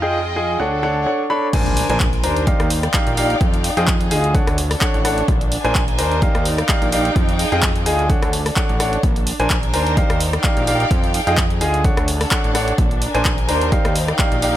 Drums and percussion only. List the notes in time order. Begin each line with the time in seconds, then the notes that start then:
1.53 kick, closed hi-hat, crash
1.66 closed hi-hat
1.77 open hi-hat
1.90 closed hi-hat
2.00 kick, clap, closed hi-hat
2.13 closed hi-hat
2.24 open hi-hat
2.36 closed hi-hat
2.47 kick, closed hi-hat
2.60 cross-stick, closed hi-hat
2.70 open hi-hat
2.83 cross-stick, closed hi-hat
2.94 kick, clap, closed hi-hat
3.07 closed hi-hat
3.17 open hi-hat
3.30 closed hi-hat
3.41 kick, closed hi-hat
3.54 closed hi-hat
3.64 open hi-hat
3.77 closed hi-hat
3.87 kick, clap, closed hi-hat
4.01 closed hi-hat
4.11 open hi-hat
4.24 closed hi-hat
4.35 kick, closed hi-hat
4.47 cross-stick, closed hi-hat
4.58 open hi-hat
4.71 cross-stick, open hi-hat
4.81 kick, clap, closed hi-hat
4.94 closed hi-hat
5.05 cross-stick, open hi-hat
5.18 closed hi-hat
5.28 kick, closed hi-hat
5.41 closed hi-hat
5.52 open hi-hat
5.65 closed hi-hat
5.75 kick, clap, closed hi-hat
5.88 closed hi-hat
5.99 open hi-hat
6.11 closed hi-hat
6.22 kick, closed hi-hat
6.35 cross-stick, closed hi-hat
6.45 open hi-hat
6.58 cross-stick, closed hi-hat
6.69 kick, clap, closed hi-hat
6.82 closed hi-hat
6.92 open hi-hat
7.05 closed hi-hat
7.16 kick, closed hi-hat
7.29 closed hi-hat
7.39 open hi-hat
7.52 closed hi-hat
7.62 kick, clap, closed hi-hat
7.76 closed hi-hat
7.86 open hi-hat
7.99 closed hi-hat
8.10 kick, closed hi-hat
8.22 cross-stick, closed hi-hat
8.33 open hi-hat
8.46 cross-stick, open hi-hat
8.56 kick, clap, closed hi-hat
8.69 closed hi-hat
8.80 cross-stick, open hi-hat
8.93 closed hi-hat
9.03 kick, closed hi-hat
9.16 closed hi-hat
9.27 open hi-hat
9.40 closed hi-hat
9.50 kick, clap, closed hi-hat
9.63 closed hi-hat
9.74 open hi-hat
9.86 closed hi-hat
9.97 kick, closed hi-hat
10.10 cross-stick, closed hi-hat
10.20 open hi-hat
10.33 cross-stick, closed hi-hat
10.44 kick, clap, closed hi-hat
10.57 closed hi-hat
10.67 open hi-hat
10.80 closed hi-hat
10.91 kick, closed hi-hat
11.04 closed hi-hat
11.14 open hi-hat
11.27 closed hi-hat
11.37 kick, clap, closed hi-hat
11.50 closed hi-hat
11.61 open hi-hat
11.74 closed hi-hat
11.84 kick, closed hi-hat
11.97 cross-stick, closed hi-hat
12.08 open hi-hat
12.21 cross-stick, open hi-hat
12.31 kick, clap, closed hi-hat
12.44 closed hi-hat
12.55 cross-stick, open hi-hat
12.68 closed hi-hat
12.78 kick, closed hi-hat
12.91 closed hi-hat
13.02 open hi-hat
13.15 closed hi-hat
13.25 kick, clap, closed hi-hat
13.38 closed hi-hat
13.49 open hi-hat
13.61 closed hi-hat
13.72 kick, closed hi-hat
13.85 cross-stick, closed hi-hat
13.96 open hi-hat
14.08 cross-stick, closed hi-hat
14.19 kick, clap, closed hi-hat
14.32 closed hi-hat
14.42 open hi-hat